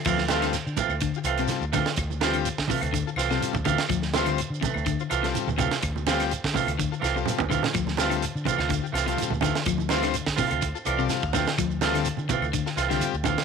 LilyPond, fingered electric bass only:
\new Staff \with { instrumentName = "Fingered electric bass" } { \clef bass \time 4/4 \key d \minor \tempo 4 = 125 d,4~ d,16 d16 r16 d,8 r16 c,8 r16 d,8 r16 | d,4~ d,16 d16 r16 d,8 r16 c,8 r16 d,8 r16 | d,4~ d,16 d16 r16 d,8 r16 c,8 r16 d,8 r16 | d,4~ d,16 d16 r16 d,8 r16 c,8 r16 d,8 r16 |
d,4~ d,16 d16 r16 d,8 r16 c,8 r16 d,8 r16 | d,4~ d,16 d16 r16 d,8 r16 c,8 r16 d,8 r16 | d,4~ d,16 d16 r16 d,8 r16 c,8 r16 d,8 r16 | }